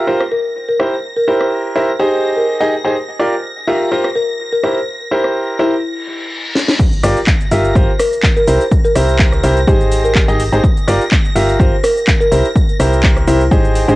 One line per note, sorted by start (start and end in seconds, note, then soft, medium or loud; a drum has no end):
0.00 6.78 A#6 medium
0.07 0.21 F4 medium
0.07 0.21 G4 medium
0.07 0.21 A#4 medium
0.07 0.21 C5 medium
0.20 cross-stick medium
0.32 0.47 A#4 medium
0.69 0.82 A#4 medium
0.79 0.93 E4 medium
0.79 0.93 G4 medium
0.79 0.93 A#4 medium
0.79 0.93 C5 medium
0.79 cross-stick medium
1.16 1.64 A#4 medium
1.27 1.73 E4 medium
1.27 1.73 G4 medium
1.27 1.73 A#4 medium
1.27 1.73 C5 medium
1.40 cross-stick medium
1.75 1.89 E4 medium
1.75 1.89 G4 medium
1.75 1.89 A#4 medium
1.75 1.89 C5 loud
1.99 2.57 D#4 medium
1.99 2.57 G4 medium
1.99 2.15 G4 medium
1.99 2.57 G#4 medium
1.99 2.57 C5 loud
2.36 3.01 A#4 medium
2.60 2.73 D#4 medium
2.60 2.73 G4 medium
2.60 2.73 G#4 medium
2.60 2.73 D#5 loud
2.85 2.94 D#4 medium
2.85 2.94 G4 medium
2.85 2.94 G#4 medium
2.85 2.94 C5 medium
3.20 3.33 F4 medium
3.20 3.33 G4 medium
3.20 3.33 A#4 medium
3.20 3.33 D5 medium
3.68 3.88 F4 medium
3.68 3.88 G4 medium
3.68 3.88 A#4 medium
3.68 3.88 E5 medium
3.92 4.05 F4 medium
3.92 4.05 G4 medium
3.92 4.05 A#4 medium
3.92 4.05 C5 medium
4.04 cross-stick medium
4.16 4.31 A#4 medium
4.52 4.66 A#4 medium
4.63 4.77 E4 medium
4.63 4.77 G4 medium
4.63 4.77 A#4 medium
4.63 4.77 C5 medium
4.63 cross-stick medium
5.11 5.57 E4 medium
5.11 5.57 G4 medium
5.11 5.57 A#4 medium
5.11 5.57 C5 medium
5.24 cross-stick medium
5.59 5.73 E4 medium
5.59 5.75 E4 medium
5.59 5.73 G4 medium
5.59 5.73 A#4 medium
5.59 5.73 C5 loud
5.84 reverse cymbal medium
6.55 snare medium
6.68 snare medium
6.79 13.96 A#6 medium
6.79 kick loud
6.79 crash loud
6.79 impact medium
6.79 shaker soft
6.93 shaker soft
7.03 7.15 G1 loud
7.03 7.17 F4 medium
7.03 7.17 G4 medium
7.03 7.17 A#4 medium
7.03 7.17 D5 loud
7.03 cross-stick medium
7.03 open hi-hat loud
7.03 shaker medium
7.17 shaker soft
7.27 kick loud
7.27 clap loud
7.27 shaker soft
7.41 shaker soft
7.51 7.73 G1 loud
7.51 7.72 F4 medium
7.51 7.72 G4 medium
7.51 7.72 A#4 medium
7.51 7.72 E5 loud
7.51 open hi-hat medium
7.51 shaker medium
7.65 shaker soft
7.75 7.87 G1 loud
7.75 7.89 F4 medium
7.75 7.89 G4 medium
7.75 7.89 A#4 medium
7.75 7.89 C5 medium
7.75 kick loud
7.75 shaker soft
7.99 8.15 A#4 medium
7.99 cross-stick medium
7.99 open hi-hat loud
7.99 shaker medium
8.13 shaker soft
8.23 kick loud
8.23 clap loud
8.23 shaker soft
8.37 8.50 A#4 medium
8.37 shaker soft
8.47 8.59 C2 loud
8.47 8.61 E4 medium
8.47 8.61 G4 medium
8.47 8.61 A#4 medium
8.47 8.61 C5 medium
8.47 open hi-hat medium
8.47 shaker medium
8.61 shaker soft
8.71 kick loud
8.71 shaker soft
8.85 9.33 A#4 loud
8.85 shaker soft
8.95 9.41 C2 medium
8.95 9.41 E4 medium
8.95 9.41 G4 medium
8.95 9.41 A#4 medium
8.95 9.41 C5 medium
8.95 cross-stick medium
8.95 open hi-hat loud
8.95 shaker medium
9.09 shaker soft
9.19 kick loud
9.19 clap loud
9.19 shaker soft
9.32 cross-stick medium
9.32 shaker soft
9.43 9.65 C2 loud
9.43 9.57 E4 medium
9.43 9.57 G4 medium
9.43 9.57 A#4 medium
9.43 9.57 C5 loud
9.43 open hi-hat loud
9.43 shaker medium
9.57 shaker soft
9.67 10.26 G#1 loud
9.67 10.25 D#4 medium
9.67 10.25 G4 medium
9.67 9.83 G4 medium
9.67 10.25 G#4 medium
9.67 10.25 C5 loud
9.67 kick loud
9.67 shaker soft
9.81 shaker soft
9.92 open hi-hat loud
9.92 shaker medium
10.05 10.69 A#4 medium
10.05 shaker soft
10.15 kick loud
10.15 clap loud
10.15 shaker soft
10.28 10.50 G#1 loud
10.28 10.41 D#4 loud
10.28 10.41 G4 medium
10.28 10.41 G#4 medium
10.28 10.41 D#5 loud
10.28 shaker soft
10.40 open hi-hat loud
10.40 shaker medium
10.53 10.60 G#1 loud
10.53 10.62 D#4 medium
10.53 10.62 G4 medium
10.53 10.62 G#4 medium
10.53 10.62 C5 medium
10.53 shaker soft
10.64 kick loud
10.64 shaker soft
10.77 shaker soft
10.88 10.99 G1 loud
10.88 11.01 F4 medium
10.88 11.01 G4 medium
10.88 11.01 A#4 medium
10.88 11.01 D5 loud
10.88 cross-stick medium
10.88 open hi-hat loud
10.88 shaker medium
11.01 shaker soft
11.11 kick loud
11.11 clap loud
11.11 shaker soft
11.25 shaker soft
11.36 11.57 G1 loud
11.36 11.56 F4 medium
11.36 11.56 G4 medium
11.36 11.56 A#4 medium
11.36 11.56 E5 loud
11.36 open hi-hat loud
11.36 shaker medium
11.49 shaker soft
11.59 11.71 G1 loud
11.59 11.73 F4 medium
11.59 11.73 G4 medium
11.59 11.73 A#4 medium
11.59 11.73 C5 medium
11.59 kick loud
11.59 shaker soft
11.84 11.99 A#4 medium
11.84 cross-stick medium
11.84 open hi-hat loud
11.84 shaker medium
11.97 shaker soft
12.07 kick loud
12.07 clap loud
12.07 shaker soft
12.20 12.34 A#4 medium
12.20 shaker soft
12.31 12.43 C2 loud
12.31 12.45 E4 medium
12.31 12.45 G4 medium
12.31 12.45 A#4 medium
12.31 12.45 C5 medium
12.31 open hi-hat loud
12.31 shaker medium
12.45 shaker soft
12.55 kick loud
12.55 shaker soft
12.69 shaker soft
12.80 13.25 C2 loud
12.80 13.25 E4 medium
12.80 13.25 G4 medium
12.80 13.25 A#4 medium
12.80 13.25 C5 medium
12.80 cross-stick medium
12.80 open hi-hat loud
12.80 shaker medium
12.93 shaker soft
13.03 kick loud
13.03 clap loud
13.03 shaker soft
13.17 cross-stick medium
13.17 shaker soft
13.27 13.49 C2 loud
13.27 13.43 E4 medium
13.27 13.41 E4 medium
13.27 13.41 G4 medium
13.27 13.41 A#4 medium
13.27 13.41 C5 loud
13.27 open hi-hat loud
13.27 shaker medium
13.41 shaker soft
13.51 13.86 G#1 loud
13.51 13.86 D#4 medium
13.51 13.86 G4 medium
13.51 13.86 G#4 medium
13.51 13.86 C5 loud
13.51 kick loud
13.51 shaker soft
13.65 shaker soft
13.76 open hi-hat loud
13.76 shaker medium
13.88 13.96 G#1 loud
13.88 13.96 D4 medium
13.88 13.96 D#4 medium
13.88 13.96 G4 medium
13.88 13.96 G#4 medium
13.88 13.96 C5 medium
13.88 shaker soft